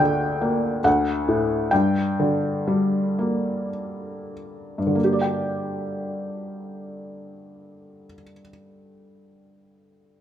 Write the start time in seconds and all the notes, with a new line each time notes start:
Already playing: D2 A#2 D3 D5 G5
0.41 A#3
0.84 D2 F#5
1.28 A2
1.71 G2 G5
2.20 D3
2.68 G3
3.19 A#3
4.78 G2
4.87 D3
4.95 A#3
5.04 G4
5.13 D5
5.22 G5